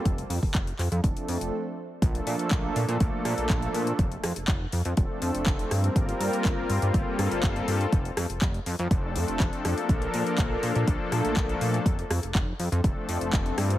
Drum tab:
HH |xxooxxoxxxox----|xxoxx-oxx-oxxxox|xxoxx-oxx-oxxxox|xxoxx-oxx-oxxxox|
CP |----x-x---------|----x-------x---|----x-------x---|----x-------x---|
SD |----------------|----------r-----|--r-----------r-|----------r-----|
BD |o--oo---o-------|o---o---o---o---|o---o---o---o---|o---o---o---o---|

HH |xxoxxxoxx-oxxxox|xxoxx-oxx-oxxxox|xxoxx-oxx-oxxxox|
CP |----x-------x---|----x-------x---|----x-------x---|
SD |--r-----------r-|----------r-----|--r-----------r-|
BD |o---o---o---o---|o---o---o---o---|o---o---o---o---|